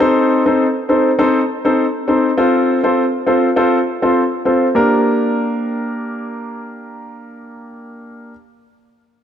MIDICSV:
0, 0, Header, 1, 2, 480
1, 0, Start_track
1, 0, Key_signature, -2, "minor"
1, 0, Tempo, 594059
1, 2, Time_signature, 4, 2, 24, 8
1, 7463, End_track
2, 0, Start_track
2, 0, Title_t, "Grand piano"
2, 0, Program_c, 0, 0
2, 0, Note_on_c, 0, 60, 86
2, 0, Note_on_c, 0, 63, 82
2, 2, Note_on_c, 0, 69, 77
2, 3, Note_on_c, 0, 72, 99
2, 340, Note_off_c, 0, 60, 0
2, 341, Note_off_c, 0, 63, 0
2, 342, Note_off_c, 0, 69, 0
2, 343, Note_off_c, 0, 72, 0
2, 371, Note_on_c, 0, 60, 73
2, 372, Note_on_c, 0, 63, 69
2, 374, Note_on_c, 0, 69, 67
2, 376, Note_on_c, 0, 72, 84
2, 526, Note_off_c, 0, 60, 0
2, 526, Note_off_c, 0, 63, 0
2, 527, Note_off_c, 0, 69, 0
2, 528, Note_off_c, 0, 72, 0
2, 719, Note_on_c, 0, 60, 72
2, 721, Note_on_c, 0, 63, 66
2, 722, Note_on_c, 0, 69, 68
2, 724, Note_on_c, 0, 72, 80
2, 890, Note_off_c, 0, 60, 0
2, 890, Note_off_c, 0, 63, 0
2, 891, Note_off_c, 0, 69, 0
2, 892, Note_off_c, 0, 72, 0
2, 959, Note_on_c, 0, 60, 91
2, 961, Note_on_c, 0, 63, 80
2, 962, Note_on_c, 0, 69, 83
2, 964, Note_on_c, 0, 72, 102
2, 1129, Note_off_c, 0, 60, 0
2, 1130, Note_off_c, 0, 63, 0
2, 1131, Note_off_c, 0, 69, 0
2, 1132, Note_off_c, 0, 72, 0
2, 1331, Note_on_c, 0, 60, 74
2, 1333, Note_on_c, 0, 63, 68
2, 1334, Note_on_c, 0, 69, 71
2, 1336, Note_on_c, 0, 72, 85
2, 1486, Note_off_c, 0, 60, 0
2, 1487, Note_off_c, 0, 63, 0
2, 1487, Note_off_c, 0, 69, 0
2, 1488, Note_off_c, 0, 72, 0
2, 1679, Note_on_c, 0, 60, 72
2, 1680, Note_on_c, 0, 63, 61
2, 1682, Note_on_c, 0, 69, 63
2, 1684, Note_on_c, 0, 72, 77
2, 1849, Note_off_c, 0, 60, 0
2, 1850, Note_off_c, 0, 63, 0
2, 1851, Note_off_c, 0, 69, 0
2, 1852, Note_off_c, 0, 72, 0
2, 1919, Note_on_c, 0, 60, 84
2, 1921, Note_on_c, 0, 65, 79
2, 1922, Note_on_c, 0, 69, 73
2, 1924, Note_on_c, 0, 72, 91
2, 2261, Note_off_c, 0, 60, 0
2, 2261, Note_off_c, 0, 65, 0
2, 2262, Note_off_c, 0, 69, 0
2, 2263, Note_off_c, 0, 72, 0
2, 2290, Note_on_c, 0, 60, 74
2, 2292, Note_on_c, 0, 65, 68
2, 2294, Note_on_c, 0, 69, 66
2, 2295, Note_on_c, 0, 72, 84
2, 2445, Note_off_c, 0, 60, 0
2, 2446, Note_off_c, 0, 65, 0
2, 2447, Note_off_c, 0, 69, 0
2, 2448, Note_off_c, 0, 72, 0
2, 2639, Note_on_c, 0, 60, 73
2, 2640, Note_on_c, 0, 65, 68
2, 2642, Note_on_c, 0, 69, 65
2, 2643, Note_on_c, 0, 72, 83
2, 2809, Note_off_c, 0, 60, 0
2, 2810, Note_off_c, 0, 65, 0
2, 2811, Note_off_c, 0, 69, 0
2, 2812, Note_off_c, 0, 72, 0
2, 2879, Note_on_c, 0, 60, 89
2, 2881, Note_on_c, 0, 65, 82
2, 2882, Note_on_c, 0, 69, 82
2, 2884, Note_on_c, 0, 72, 97
2, 3049, Note_off_c, 0, 60, 0
2, 3050, Note_off_c, 0, 65, 0
2, 3051, Note_off_c, 0, 69, 0
2, 3052, Note_off_c, 0, 72, 0
2, 3251, Note_on_c, 0, 60, 73
2, 3252, Note_on_c, 0, 65, 68
2, 3254, Note_on_c, 0, 69, 67
2, 3256, Note_on_c, 0, 72, 83
2, 3405, Note_off_c, 0, 60, 0
2, 3406, Note_off_c, 0, 65, 0
2, 3407, Note_off_c, 0, 69, 0
2, 3408, Note_off_c, 0, 72, 0
2, 3598, Note_on_c, 0, 60, 67
2, 3600, Note_on_c, 0, 65, 65
2, 3602, Note_on_c, 0, 69, 63
2, 3603, Note_on_c, 0, 72, 76
2, 3769, Note_off_c, 0, 60, 0
2, 3770, Note_off_c, 0, 65, 0
2, 3771, Note_off_c, 0, 69, 0
2, 3772, Note_off_c, 0, 72, 0
2, 3837, Note_on_c, 0, 58, 76
2, 3840, Note_on_c, 0, 62, 71
2, 3842, Note_on_c, 0, 67, 69
2, 3845, Note_on_c, 0, 70, 85
2, 6714, Note_off_c, 0, 58, 0
2, 6717, Note_off_c, 0, 62, 0
2, 6720, Note_off_c, 0, 67, 0
2, 6723, Note_off_c, 0, 70, 0
2, 7463, End_track
0, 0, End_of_file